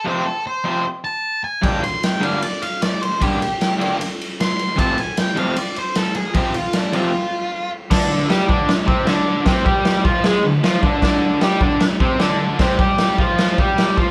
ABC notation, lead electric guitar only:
X:1
M:4/4
L:1/8
Q:1/4=153
K:Dm
V:1 name="Lead electric guitar"
c A c2 z a2 ^g | g c' g f d f d c | G4 z2 c'2 | a ^g =g f d c A ^G |
G F D F4 z | z8 | z8 | z8 |
z8 |]